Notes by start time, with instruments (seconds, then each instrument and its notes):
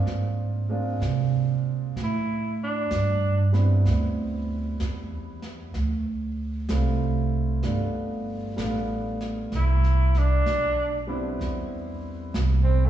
Already playing: grand piano A#3 C4 D4 F4 G#4
0.06 upright bass G#2, brush sweep, snare
0.69 grand piano G#3 A#3 C4 D4 F4
1.01 upright bass C3, snare, hi-hat pedal
1.96 upright bass A2, brush sweep, snare
2.03 tenor saxophone E4
2.63 tenor saxophone D4
2.91 upright bass G2, snare, hi-hat pedal
3.52 grand piano G3 B3 C4 D4 E4, snare
3.85 upright bass D2, brush sweep, snare
4.80 upright bass E2, snare, hi-hat pedal
5.42 snare
5.74 upright bass D2, brush sweep, snare
6.69 upright bass C2, grand piano G3 A3 C4 E4 F4, snare, hi-hat pedal
7.63 upright bass G1, grand piano G3 A3 B3 D4 F4, brush sweep, snare
8.56 upright bass A1, grand piano G3 A3 B3 D4 F4, snare, hi-hat pedal
9.21 snare
9.52 upright bass C2, brush sweep, snare
9.56 tenor saxophone E4
9.83 snare
10.15 tenor saxophone D4, snare
10.46 upright bass B1, snare, hi-hat pedal
11.07 grand piano G3 B3 C4 D4 E4
11.39 upright bass E2, brush sweep, snare
12.34 upright bass C2, snare, hi-hat pedal
12.63 tenor saxophone C4
12.85 tenor saxophone A3